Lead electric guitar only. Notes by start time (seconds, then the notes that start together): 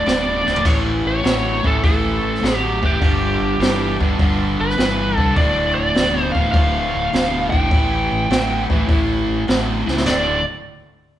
Already playing: D5
0.67 C#5
1.07 C#5
1.67 A4
1.85 A4
2.57 G4
2.86 G4
4.61 B4
5.17 A4
5.37 D5
5.75 D5
6.22 C5
6.32 F5
6.52 F5
7.50 G5
10.07 D5